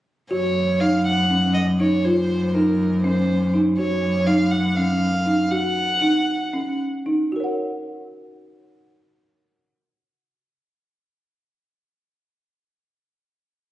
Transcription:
0.31 2.05 F#2 medium
0.31 0.59 F#4 medium
0.31 0.82 C#5 medium
0.80 1.09 D#4 medium
0.80 1.04 F5 medium
1.05 1.52 F#5 medium
1.31 1.58 C#4 medium
1.54 1.66 D#5 medium
1.80 1.94 D#4 medium
1.80 2.06 C#5 medium
2.05 3.79 F#2 medium
2.05 2.33 F4 medium
2.05 2.48 C5 medium
2.48 2.56 C5 medium
2.54 2.83 D#4 medium
2.54 3.02 A#4 medium
3.03 3.32 C#4 medium
3.03 3.56 C5 medium
3.54 3.68 D#4 medium
3.78 5.49 F#2 medium
3.78 4.06 F#4 medium
3.78 4.28 C#5 medium
4.27 4.55 D#4 medium
4.27 4.53 F5 medium
4.51 4.77 F#5 medium
4.76 5.05 C#4 medium
4.76 5.53 F5 medium
5.26 5.41 D#4 medium
5.51 5.80 F#4 medium
5.51 6.79 F#5 medium
6.02 6.31 D#4 medium
6.53 6.83 C#4 medium
7.06 7.21 D#4 medium
7.32 11.91 F#4 medium
7.32 11.95 A#4 soft
7.40 11.99 C#5 soft
7.40 12.03 F#5 soft

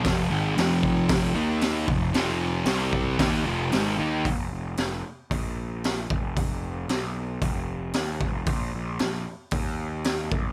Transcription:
0.03 0.29 F1 loud
0.03 0.29 F2 medium
0.03 0.30 C3 loud
0.03 0.30 F3 loud
0.03 kick loud
0.03 snare loud
0.03 open hi-hat medium
0.30 0.55 G#1 loud
0.30 0.56 G#2 medium
0.30 0.56 D#3 loud
0.30 0.57 G#3 loud
0.56 1.31 F1 medium
0.56 1.35 F2 medium
0.56 1.34 C3 medium
0.56 1.35 F3 loud
0.56 snare loud
0.56 open hi-hat medium
0.83 kick medium
1.09 kick loud
1.09 snare loud
1.09 open hi-hat medium
1.34 1.84 D#2 loud
1.34 1.87 D#3 medium
1.34 1.87 A#3 medium
1.34 1.87 D#4 loud
1.61 snare loud
1.61 open hi-hat medium
1.88 2.12 F1 medium
1.88 2.09 F2 medium
1.88 2.09 C3 medium
1.88 kick loud
2.13 2.63 F1 loud
2.13 2.66 F2 medium
2.13 2.64 C3 medium
2.13 2.66 F3 loud
2.13 snare loud
2.13 open hi-hat medium
2.65 3.15 C2 medium
2.65 3.18 C3 medium
2.65 3.19 G3 medium
2.65 3.19 C4 loud
2.65 snare loud
2.65 open hi-hat medium
2.93 kick medium
3.19 3.44 D#2 loud
3.19 3.45 D#3 medium
3.19 3.45 A#3 loud
3.19 3.45 D#4 loud
3.19 kick loud
3.19 snare loud
3.19 open hi-hat medium
3.44 3.71 F1 medium
3.44 3.70 F2 medium
3.44 3.71 C3 loud
3.44 3.71 F3 loud
3.71 3.98 G#1 loud
3.71 3.97 G#2 medium
3.71 3.96 D#3 medium
3.71 3.97 G#3 loud
3.71 snare loud
3.71 open hi-hat medium
3.97 4.24 D#2 medium
3.97 4.23 D#3 medium
3.97 4.24 A#3 medium
3.97 4.24 D#4 loud
4.25 4.50 F1 medium
4.25 kick loud
4.25 open hi-hat medium
4.53 4.76 F1 medium
4.77 5.02 F1 medium
4.77 snare loud
4.77 open hi-hat medium
5.31 6.06 A#1 medium
5.31 kick loud
5.31 open hi-hat medium
5.84 snare loud
5.84 open hi-hat medium
6.10 6.85 F1 medium
6.10 kick loud
6.37 kick loud
6.37 open hi-hat medium
6.88 7.38 B1 loud
6.88 snare loud
6.88 open hi-hat medium
7.42 7.91 F1 medium
7.42 kick loud
7.42 open hi-hat medium
7.93 8.19 D#2 medium
7.93 snare loud
7.93 open hi-hat medium
8.21 8.45 F1 medium
8.21 kick loud
8.46 8.71 A#1 medium
8.46 kick loud
8.46 open hi-hat medium
8.74 8.99 A#1 medium
8.99 9.25 A#1 medium
8.99 snare loud
8.99 open hi-hat medium
9.51 10.28 D#2 medium
9.51 kick loud
9.51 open hi-hat medium
10.04 snare loud
10.04 open hi-hat medium
10.32 10.53 A#1 medium
10.32 kick loud

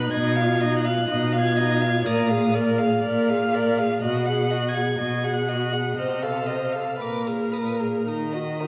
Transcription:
0.00 0.12 D#4 medium
0.00 0.11 B4 medium
0.00 0.12 F#6 loud
0.10 0.97 B2 medium
0.10 0.39 D#4 medium
0.10 0.37 D#5 medium
0.10 0.78 G#6 loud
0.36 0.63 F4 medium
0.36 0.61 F5 medium
0.60 0.87 D#4 medium
0.60 0.86 D#5 medium
0.76 1.40 F#6 loud
0.85 1.09 F4 medium
0.85 1.07 F5 medium
1.08 1.95 B2 medium
1.08 1.36 D#4 medium
1.08 1.33 D#5 medium
1.32 1.60 F4 medium
1.32 1.58 F5 medium
1.40 2.07 G#6 loud
1.57 1.84 D#4 medium
1.57 1.82 D#5 medium
1.81 2.06 F4 medium
1.81 2.04 F5 medium
2.05 2.92 A#2 medium
2.05 2.32 A#4 medium
2.05 2.30 D5 medium
2.05 2.56 D#6 medium
2.29 2.57 G#4 medium
2.29 2.55 F5 medium
2.54 2.81 A#4 medium
2.54 2.80 D5 medium
2.54 4.02 F6 loud
2.78 3.04 G#4 medium
2.78 3.02 F5 medium
3.03 3.91 A#2 medium
3.03 3.31 A#4 medium
3.03 3.31 D5 medium
3.29 3.55 G#4 medium
3.29 3.56 F5 medium
3.54 3.80 A#4 medium
3.54 3.80 D5 medium
3.78 4.03 G#4 medium
3.78 4.01 F5 medium
4.02 4.88 B2 medium
4.02 4.30 F#4 medium
4.02 4.27 D#5 medium
4.02 4.70 F#6 loud
4.26 4.54 G#4 medium
4.26 4.51 F#5 medium
4.50 4.78 F#4 medium
4.50 4.76 D#5 medium
4.68 5.35 G#6 loud
4.75 5.00 G#4 medium
4.75 4.98 F#5 soft
4.99 5.85 B2 medium
4.99 5.25 F#4 medium
4.99 5.25 D#5 medium
5.23 5.50 G#4 medium
5.23 5.49 F#5 medium
5.33 6.01 F#6 medium
5.48 5.74 F#4 medium
5.48 5.74 D#5 medium
5.73 5.97 G#4 soft
5.73 5.96 F#5 medium
5.97 6.88 C3 medium
5.97 6.24 C5 medium
5.97 6.24 D#5 medium
5.97 7.02 F6 medium
6.22 6.50 A4 soft
6.22 6.48 F5 soft
6.46 6.76 C5 soft
6.46 6.74 D#5 soft
6.73 7.00 A4 soft
6.73 6.98 F5 soft
6.99 7.94 A#2 medium
6.99 7.28 A#4 soft
6.99 7.27 B4 soft
6.99 7.29 D6 medium
7.25 7.55 G#4 soft
7.25 7.54 A#4 soft
7.25 7.55 F6 medium
7.52 7.81 A#4 soft
7.52 7.80 B4 soft
7.52 7.80 D#6 medium
7.79 8.05 G#4 soft
7.79 8.05 A#4 soft
7.79 8.09 F6 medium
8.06 8.67 D#3 medium
8.06 8.35 D#4 soft
8.06 8.35 A#4 soft
8.06 8.67 D#6 medium
8.33 8.62 F#4 soft
8.33 8.62 D#5 soft
8.60 8.67 D#4 soft
8.60 8.67 A#4 soft

